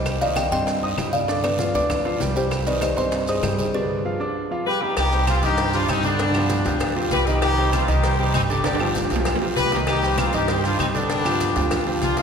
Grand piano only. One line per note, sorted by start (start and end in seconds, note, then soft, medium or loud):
0.00 0.16 G3 medium
0.00 0.16 G4 medium
0.00 0.16 G5 medium
0.21 0.46 D#3 medium
0.21 0.46 D#4 medium
0.21 0.46 D#5 medium
0.52 0.77 C4 medium
0.52 0.77 C5 medium
0.52 0.77 C6 medium
0.83 0.95 D#4 medium
0.83 0.95 D#5 medium
0.83 0.96 D#6 medium
0.98 1.23 G3 medium
0.98 1.23 G4 medium
0.98 1.23 G5 medium
1.29 1.54 D3 medium
1.29 1.54 D4 medium
1.29 1.54 D5 medium
1.59 1.72 F3 medium
1.59 1.72 F4 medium
1.59 1.72 F5 medium
1.74 2.00 D4 medium
1.74 2.00 D5 medium
1.74 2.00 D6 medium
2.05 2.18 F3 medium
2.05 2.18 F4 medium
2.05 2.18 F5 medium
2.21 2.33 G3 medium
2.21 2.33 G4 medium
2.21 2.33 G5 medium
2.36 2.61 G3 medium
2.36 2.61 G4 medium
2.36 2.61 G5 medium
2.66 2.92 D#3 medium
2.66 2.92 D#4 medium
2.66 2.92 D#5 medium
2.97 3.22 C4 medium
2.97 3.22 C5 medium
2.97 3.22 C6 medium
3.28 3.41 D#4 medium
3.28 3.41 D#5 medium
3.28 3.41 D#6 medium
3.44 3.69 G3 medium
3.44 3.69 G4 medium
3.44 3.69 G5 medium
3.74 3.99 D3 medium
3.74 4.00 D4 medium
3.74 4.00 D5 medium
4.05 4.17 F3 medium
4.05 4.18 F4 medium
4.05 4.18 F5 medium
4.20 4.45 D4 medium
4.20 4.45 D5 medium
4.20 4.46 D6 medium
4.51 4.63 F3 medium
4.51 4.64 F4 medium
4.51 4.64 F5 medium
4.66 4.79 G3 medium
4.66 4.79 G4 medium
4.66 4.79 G5 medium
4.82 4.94 G3 medium
4.82 4.95 G4 medium
4.82 4.95 G5 medium
5.12 5.37 G3 medium
5.12 5.37 G4 medium
5.12 5.38 C5 medium
5.43 5.56 D#3 loud
5.43 5.56 D#4 medium
5.43 5.56 D#5 loud
5.58 5.71 G3 medium
5.58 5.71 G4 medium
5.58 5.71 C5 medium
5.74 5.99 G3 medium
5.74 5.99 G4 medium
5.74 5.99 C5 medium
6.04 6.17 D3 medium
6.04 6.17 D4 medium
6.04 6.17 D5 medium
6.20 6.32 D3 medium
6.20 6.32 D4 medium
6.20 6.33 D5 medium
6.35 6.60 F3 medium
6.35 6.60 F4 medium
6.35 6.60 G4 medium
6.65 6.90 F3 loud
6.65 6.91 F4 medium
6.65 6.91 G4 medium
6.96 7.21 F3 medium
6.96 7.21 F4 medium
6.96 7.22 G4 medium
7.27 7.52 D#3 medium
7.27 7.52 D#4 medium
7.27 7.52 D#5 loud
7.58 7.83 G3 medium
7.58 7.83 G4 medium
7.58 7.83 C5 medium
7.88 8.01 D#3 loud
7.88 8.01 D#4 medium
7.88 8.01 D#5 medium
8.03 8.16 G3 medium
8.03 8.16 G4 medium
8.03 8.16 C5 medium
8.19 8.44 G3 medium
8.19 8.44 G4 medium
8.19 8.44 C5 medium
8.49 8.62 D3 medium
8.49 8.62 D4 medium
8.49 8.62 D5 medium
8.65 8.77 D3 medium
8.65 8.78 D4 medium
8.65 8.78 D5 medium
8.80 9.05 F3 medium
8.80 9.06 F4 medium
8.80 9.06 G4 medium
9.11 9.36 F3 medium
9.11 9.36 F4 medium
9.11 9.36 G4 medium
9.41 9.67 F3 medium
9.41 9.67 F4 medium
9.41 9.67 G4 medium
9.72 9.97 D#3 medium
9.72 9.98 D#4 medium
9.72 9.98 D#5 medium
10.03 10.28 G3 medium
10.03 10.28 G4 medium
10.03 10.28 C5 medium
10.34 10.46 D#3 medium
10.34 10.46 D#4 medium
10.34 10.46 D#5 loud
10.48 10.61 G3 medium
10.48 10.61 G4 medium
10.48 10.61 C5 medium
10.63 10.89 G3 medium
10.63 10.89 G4 medium
10.63 10.89 C5 medium
10.94 11.07 D3 medium
10.94 11.07 D4 medium
10.94 11.07 D5 medium
11.10 11.22 D3 medium
11.10 11.22 D4 medium
11.10 11.23 D5 medium
11.25 11.50 F3 medium
11.25 11.51 F4 medium
11.25 11.51 G4 medium
11.56 11.81 F3 medium
11.56 11.81 F4 medium
11.56 11.81 G4 medium
11.87 12.12 F3 medium
11.87 12.12 F4 medium
11.87 12.12 G4 medium
12.17 12.22 D#3 medium
12.17 12.22 D#4 medium
12.17 12.22 D#5 medium